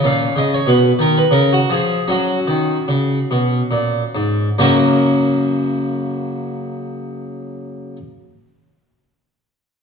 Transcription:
<<
  \new Staff \with { instrumentName = "Harpsichord" } { \time 3/4 \key fis \major \tempo 4 = 69 << { eis''8 dis''16 cis''16 b'8 ais'16 b'16 ais'16 fis'16 gis'8 | fis'2~ fis'8 r8 | <fis, cis ais cis' fis' ais'>2.~ | <fis, cis ais cis' fis' ais'>2. | } \\ { cis'4 r2 | cis'2. | r2. | r2. | } >> }
  \new Staff \with { instrumentName = "Harpsichord" } { \clef bass \time 3/4 \key fis \major ais,8 cis8 b,8 dis8 cis8 eis8 | fis8 dis8 cis8 b,8 ais,8 gis,8 | r2. | r2. | }
>>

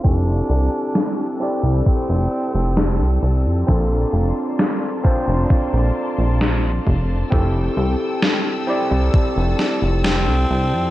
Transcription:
<<
  \new Staff \with { instrumentName = "String section" } { \time 4/4 \key f \major \tempo 4 = 66 << { <a' e'''>1 | <bes d'' c'''>1 | <a' e'''>1 | } \\ { g''1 | a''1 | g''2 a''2 | } >> }
  \new Staff \with { instrumentName = "Tine electric piano" } { \time 4/4 \key f \major <c' e' g' a'>4. <c' e' g' d''>2~ <c' e' g' d''>8 | <c' d' f' a'>4. <c' d' f' c''>2~ <c' d' f' c''>8 | <c' e' g' a'>4. <c' e' g' d''>2~ <c' e' g' d''>8 | }
  \new Staff \with { instrumentName = "Tenor saxophone" } { \time 4/4 \key f \major d'4. r8 c'4. r8 | r1 | r2. c'4 | }
  \new Staff \with { instrumentName = "Analog synth bass" } { \clef bass \time 4/4 \key f \major f,,8 c,16 r4 c,16 r16 f,,16 r16 f,,8 c,16 c,16 f,16 | bes,,8 f,,16 r4 f,,16 bes,,16 bes,,16 r16 bes,,8. f,,8 | f,,8 c,16 r4 c,16 r16 f,,16 r16 f,,8 c,16 c,16 f,16 | }
  \new DrumStaff \with { instrumentName = "Drums" } \drummode { \time 4/4 bd4 sn4 bd4 sn4 | bd4 sn8 bd8 bd4 sn8 bd8 | bd4 sn4 bd8 sn8 sn4 | }
>>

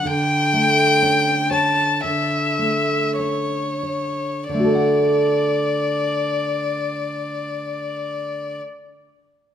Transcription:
<<
  \new Staff \with { instrumentName = "Violin" } { \time 4/4 \key d \major \tempo 4 = 48 g''4. a''8 e''4 cis''4 | d''1 | }
  \new Staff \with { instrumentName = "Nylon-string guitar" } { \time 4/4 \key d \major d8 a8 cis'8 cis''8 d8 a8 cis'8 cis''8 | <d a fis' a' d'' fis''>1 | }
>>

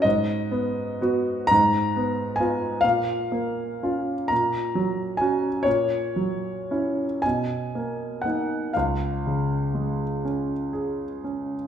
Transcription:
<<
  \new Staff \with { instrumentName = "Grand piano" } { \time 12/8 \key fis \major \tempo 4. = 41 dis''4. ais''4 aes''8 eis''4. ais''4 gis''8 | cis''4. gis''4 fis''8 eis''4. r4. | }
  \new Staff \with { instrumentName = "Grand piano" } { \time 12/8 \key fis \major gis,8 b8 <b fis'>8 aes,8 ces'8 <ces' f'>8 ais,8 ais8 <cis' eis'>8 ais,8 fis8 <cis' fis'>8 | ais,8 fis8 <cis' e'>8 b,8 ais8 <ais dis'>8 cis,8 cis8 gis8 cis'8 gis'8 cis'8 | }
>>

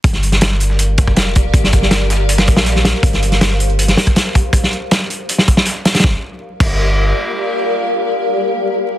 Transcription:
<<
  \new Staff \with { instrumentName = "Ambient pad" } { \time 4/4 \key g \minor \tempo 4 = 160 << { <g' bes' f''>1~ | <g' bes' f''>1~ | <g' bes' f''>1 | r1 |
<g' bes' d'' f''>1~ | <g' bes' d'' f''>1 | } \\ { d''1~ | d''2 c''2~ | c''1 | r1 |
r1 | r1 | } >> }
  \new Staff \with { instrumentName = "808-style bass" } { \clef bass \time 4/4 \key g \minor g,,2. f,,4 | g,,2~ g,,8 bes,,4 r8 | g,,2~ g,,8 r4. | r1 |
g,,8 r4 g,,4. r4 | r1 | }
  \new DrumStaff \with { instrumentName = "Drums" } \drummode { \time 4/4 <hh bd>16 <hh sn>16 hh16 <hh sn>16 <hh sn>8 hh16 sn16 hh8 <hh bd>16 bd16 <hh sn>8 <hh bd>8 | <hh bd>16 sn16 <hh bd>16 sn16 <hh sn>16 sn16 <hh sn>8 hh16 <hh sn>16 <hh bd>16 <hh sn>16 <hh sn>16 sn16 <hh sn>8 | <hh bd>16 <hh sn>16 hh16 <hh sn>16 <hh sn>8 hh16 hh16 hh16 <hh sn>16 <hh sn>16 <hh bd>16 <hh sn>16 hh16 <hh bd>8 | <hh bd>16 sn16 hh8 <hh sn>16 sn16 hh8 hh16 sn16 <hh bd>16 sn16 <hh sn>8 <hh sn>16 <hh sn>32 <hh sn>32 |
<bd sn>4 r8 <cymc bd>8 r4 r4 | r4 r4 r4 r4 | }
>>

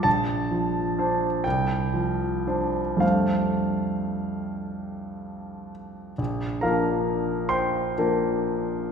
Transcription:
<<
  \new Staff \with { instrumentName = "Grand piano" } { \time 6/8 \key f \major \tempo 4. = 41 a''4. g''4. | f''2~ f''8 r8 | \key bes \major r8 <bes' f'' bes''>4 <c'' g'' c'''>4. | }
  \new Staff \with { instrumentName = "Grand piano" } { \time 6/8 \key f \major bes,,8 f8 <d' c''>8 c,8 f8 <d' c''>8 | <f, g a d' c''>2. | \key bes \major bes,,8 <f bes d'>4. <f bes d' bes'>4 | }
>>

